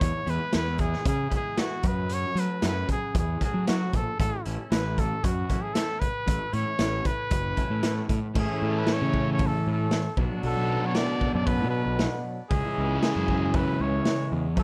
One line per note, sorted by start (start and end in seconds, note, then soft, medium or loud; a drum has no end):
0.00 0.11 E2 loud
0.00 0.26 E2 medium
0.00 0.26 B2 medium
0.00 0.27 E3 medium
0.00 0.32 C#5 medium
0.00 kick loud
0.00 closed hi-hat medium
0.26 0.37 E2 medium
0.26 0.51 E2 medium
0.26 0.51 B2 medium
0.26 0.51 E3 medium
0.26 0.51 G#3 medium
0.26 0.51 B3 medium
0.26 0.52 E4 medium
0.26 0.55 B4 medium
0.26 closed hi-hat medium
0.52 0.94 E2 medium
0.52 0.87 E3 medium
0.52 0.87 G#3 medium
0.52 0.87 B3 medium
0.52 0.88 E4 medium
0.52 0.82 B4 medium
0.52 snare loud
0.52 closed hi-hat medium
0.78 1.04 E2 medium
0.78 1.04 B2 medium
0.78 1.05 E3 medium
0.78 1.06 G#4 medium
0.78 kick medium
0.78 closed hi-hat medium
0.93 snare soft
1.05 1.30 E2 medium
1.05 1.30 B2 medium
1.05 1.26 C#3 medium
1.05 1.32 G#4 medium
1.05 kick loud
1.05 closed hi-hat medium
1.30 1.56 E2 medium
1.30 1.56 B2 medium
1.30 1.55 E3 medium
1.30 1.55 G#3 medium
1.30 1.56 B3 medium
1.30 1.57 E4 medium
1.30 kick medium
1.30 closed hi-hat medium
1.36 1.61 G#4 medium
1.56 1.83 E2 medium
1.56 1.83 B2 medium
1.56 1.83 E3 medium
1.56 1.84 E3 medium
1.56 1.84 G#3 medium
1.56 1.84 B3 medium
1.56 1.84 E4 medium
1.56 1.88 F#4 medium
1.56 snare loud
1.56 closed hi-hat medium
1.83 2.24 F#2 medium
1.83 2.08 F#2 medium
1.83 2.09 C#3 medium
1.83 2.09 F#3 medium
1.83 2.15 B4 medium
1.83 kick loud
1.83 closed hi-hat medium
2.09 2.35 F#2 medium
2.09 2.35 C#3 medium
2.09 2.36 F#3 medium
2.09 closed hi-hat medium
2.14 2.41 C#5 loud
2.35 2.61 F#2 medium
2.35 2.61 C#3 medium
2.35 2.46 F#3 medium
2.35 2.61 F#3 medium
2.35 2.62 A3 medium
2.35 2.63 C#4 medium
2.35 2.63 F#4 medium
2.35 closed hi-hat medium
2.40 2.65 B4 medium
2.62 2.83 F#2 medium
2.62 2.87 F#2 medium
2.62 2.87 C#3 medium
2.62 2.97 F#3 medium
2.62 2.97 A3 medium
2.62 2.97 C#4 medium
2.62 2.97 F#4 medium
2.62 snare medium
2.62 closed hi-hat medium
2.69 2.90 B4 medium
2.88 3.13 F#2 medium
2.88 3.14 C#3 medium
2.88 3.14 F#3 medium
2.88 3.15 G#4 medium
2.88 kick medium
2.88 closed hi-hat medium
3.15 3.35 E2 loud
3.15 3.39 F#2 medium
3.15 3.39 C#3 medium
3.15 kick loud
3.15 closed hi-hat medium
3.19 3.42 G#4 medium
3.41 3.65 F#2 medium
3.41 3.65 C#3 medium
3.41 3.67 F#3 medium
3.41 3.67 A3 medium
3.41 3.68 C#4 medium
3.41 3.68 F#4 medium
3.41 3.67 G#4 medium
3.41 kick medium
3.41 closed hi-hat medium
3.54 3.84 F#3 medium
3.68 3.92 F#2 medium
3.68 3.92 C#3 medium
3.68 4.02 F#3 medium
3.68 3.93 F#3 medium
3.68 4.02 A3 medium
3.68 4.02 C#4 medium
3.68 3.97 F#4 medium
3.68 4.03 F#4 medium
3.68 snare loud
3.68 closed hi-hat medium
3.93 4.03 A#1 medium
3.93 4.17 F#2 medium
3.93 4.18 C#3 medium
3.93 4.20 A4 medium
3.93 kick medium
3.93 closed hi-hat medium
4.20 4.30 A1 loud
4.20 4.45 A2 medium
4.20 4.45 E3 medium
4.20 4.45 A3 medium
4.20 4.44 A4 medium
4.20 kick loud
4.20 closed hi-hat medium
4.46 4.56 A1 medium
4.46 4.69 A2 medium
4.46 4.70 E3 medium
4.46 4.70 A3 medium
4.46 4.71 C#4 medium
4.46 4.71 E4 medium
4.46 closed hi-hat medium
4.71 5.11 A1 medium
4.71 4.96 A2 medium
4.71 5.05 E3 medium
4.71 5.06 A3 medium
4.71 5.06 C#4 medium
4.71 5.06 E4 medium
4.71 5.01 B4 medium
4.71 snare loud
4.71 closed hi-hat medium
4.97 5.22 A2 medium
4.97 5.22 E3 medium
4.97 5.23 A3 medium
4.97 5.26 A4 medium
4.97 kick medium
4.97 closed hi-hat medium
5.23 5.44 F#2 loud
5.23 5.47 A2 medium
5.23 5.47 E3 medium
5.23 5.64 F#4 medium
5.23 kick loud
5.23 closed hi-hat medium
5.48 5.73 A2 medium
5.48 5.73 E3 medium
5.48 5.74 E3 medium
5.48 5.74 A3 medium
5.48 5.74 C#4 medium
5.48 5.75 E4 medium
5.48 kick medium
5.48 closed hi-hat medium
5.62 5.75 G#4 medium
5.74 5.99 A2 medium
5.74 6.10 E3 medium
5.74 5.99 E3 medium
5.74 6.00 A3 medium
5.74 6.10 A3 medium
5.74 6.10 C#4 medium
5.74 6.10 E4 medium
5.74 6.01 A4 medium
5.74 snare loud
5.74 closed hi-hat medium
6.00 6.25 A2 medium
6.00 6.25 E3 medium
6.00 6.55 B4 loud
6.00 kick medium
6.00 closed hi-hat medium
6.27 6.37 A1 medium
6.27 6.52 A2 medium
6.27 6.52 E3 medium
6.27 6.52 A3 medium
6.27 kick loud
6.27 closed hi-hat medium
6.52 6.77 A2 medium
6.52 6.64 A2 medium
6.52 6.78 E3 medium
6.52 6.77 E3 medium
6.52 6.78 A3 medium
6.52 6.79 C#4 medium
6.52 6.79 E4 medium
6.52 7.08 C#5 loud
6.52 closed hi-hat medium
6.79 6.99 A1 medium
6.79 7.13 E3 medium
6.79 7.14 A3 medium
6.79 7.14 C#4 medium
6.79 7.14 E4 medium
6.79 snare loud
6.79 closed hi-hat medium
7.05 7.30 A2 medium
7.05 7.30 E3 medium
7.05 7.31 A3 medium
7.05 8.11 B4 loud
7.05 kick medium
7.05 closed hi-hat medium
7.31 7.51 F#1 medium
7.31 7.55 A2 medium
7.31 7.55 E3 medium
7.31 kick loud
7.31 closed hi-hat medium
7.56 7.82 E3 medium
7.56 7.83 A3 medium
7.56 7.83 C#4 medium
7.56 7.83 E4 medium
7.56 kick medium
7.56 closed hi-hat medium
7.70 8.00 A2 medium
7.83 8.09 A2 medium
7.83 8.18 E3 medium
7.83 8.09 E3 medium
7.83 8.18 A3 medium
7.83 8.09 A3 medium
7.83 8.18 C#4 medium
7.83 8.18 E4 medium
7.83 snare loud
7.83 closed hi-hat medium
8.09 8.20 A2 medium
8.09 8.34 A2 medium
8.09 8.34 E3 medium
8.09 kick medium
8.09 closed hi-hat medium
8.34 10.17 A2 medium
8.34 8.46 A2 medium
8.34 10.17 A2 medium
8.34 10.16 E3 medium
8.34 10.18 E3 medium
8.34 10.18 A3 medium
8.34 10.19 A3 medium
8.34 10.18 C#4 medium
8.34 10.18 E4 medium
8.34 kick loud
8.34 crash medium
8.38 10.19 C#4 medium
8.38 8.80 G#4 medium
8.38 10.19 A4 medium
8.62 8.82 A2 medium
8.79 8.95 B4 medium
8.87 snare loud
8.87 open hi-hat soft
8.93 9.30 C#5 loud
9.02 9.51 C#3 medium
9.14 kick medium
9.33 9.48 C#5 medium
9.38 kick loud
9.38 open hi-hat medium
9.47 9.70 A4 medium
9.67 9.86 A2 medium
9.73 10.18 A4 medium
9.91 snare loud
9.91 open hi-hat soft
10.16 10.27 B1 medium
10.16 12.49 B2 medium
10.16 12.50 B2 medium
10.16 12.50 F#3 medium
10.16 12.51 F#3 medium
10.16 12.51 B3 medium
10.16 12.52 D4 medium
10.16 12.51 D4 medium
10.16 kick loud
10.21 12.52 F#4 medium
10.43 10.53 B1 medium
10.43 10.87 A4 medium
10.43 open hi-hat medium
10.57 10.77 B1 medium
10.86 10.97 C#5 medium
10.95 11.34 D5 loud
10.95 snare loud
10.95 open hi-hat medium
11.21 kick medium
11.34 11.62 F#2 medium
11.34 11.48 D5 medium
11.46 11.70 B4 medium
11.46 kick loud
11.46 open hi-hat medium
11.61 11.80 B2 medium
11.70 12.20 B4 medium
11.86 12.06 B1 medium
11.99 snare medium
11.99 open hi-hat soft
12.49 12.61 C#2 medium
12.49 14.56 C#3 medium
12.49 14.58 E3 medium
12.49 14.57 E3 medium
12.49 14.58 G#3 medium
12.49 14.59 C#4 medium
12.49 12.98 G#4 medium
12.49 kick loud
12.49 open hi-hat soft
12.54 14.59 C#4 medium
12.54 14.59 E4 medium
12.78 12.97 C#2 medium
13.02 13.58 G#4 medium
13.02 snare loud
13.02 open hi-hat soft
13.16 13.65 F#2 medium
13.28 kick medium
13.54 13.83 B4 medium
13.54 kick loud
13.54 open hi-hat medium
13.80 14.00 C#2 medium
13.80 14.32 C#5 loud
14.05 snare loud
14.05 open hi-hat soft
14.32 14.56 E2 medium
14.56 14.63 F#2 medium
14.56 14.63 F#2 loud
14.56 14.63 F#2 medium
14.56 14.63 C#3 medium
14.56 14.63 F#3 medium
14.56 14.63 A3 medium
14.56 14.63 C#4 medium
14.56 14.63 F#4 medium
14.56 14.63 A4 medium
14.56 kick loud
14.56 open hi-hat medium